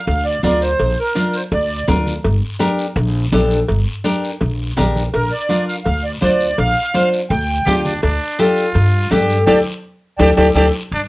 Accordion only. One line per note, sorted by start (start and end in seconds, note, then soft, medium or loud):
0.07 0.26 F5 loud
0.25 0.42 D5 medium
0.43 0.62 D5 loud
0.62 0.99 C5 loud
1.00 1.36 A#4 medium
1.35 1.43 C5 medium
1.53 1.86 D5 medium
5.14 5.32 A#4 medium
5.32 5.65 D5 medium
5.68 5.76 F5 medium
5.84 6.04 F5 medium
6.04 6.12 D5 medium
6.22 6.60 D5 loud
6.59 7.09 F5 loud
7.31 7.81 G5 loud
9.46 9.59 D5 loud
9.46 9.59 G5 loud
9.46 9.59 A5 medium
10.18 10.31 D5 medium
10.18 10.31 G5 loud
10.18 10.31 A5 medium
10.37 10.49 D5 loud
10.37 10.49 G5 loud
10.37 10.49 A5 loud
10.55 10.67 D5 loud
10.55 10.67 G5 loud
10.55 10.68 A5 medium